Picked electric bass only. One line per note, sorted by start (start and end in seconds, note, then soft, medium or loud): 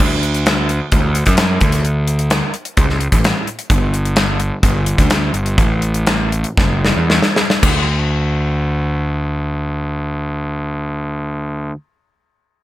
0.00 0.79 D2 loud
0.93 1.23 D2 medium
1.27 1.57 F#2 loud
1.61 2.41 D2 medium
2.78 3.07 C#2 medium
3.12 3.32 A1 medium
3.71 4.50 G1 loud
4.63 4.93 G1 loud
4.99 5.29 D2 loud
5.34 5.55 G1 medium
5.58 6.43 A1 loud
6.58 6.91 F#1 loud
6.97 7.19 E2 medium
7.63 11.71 D2 medium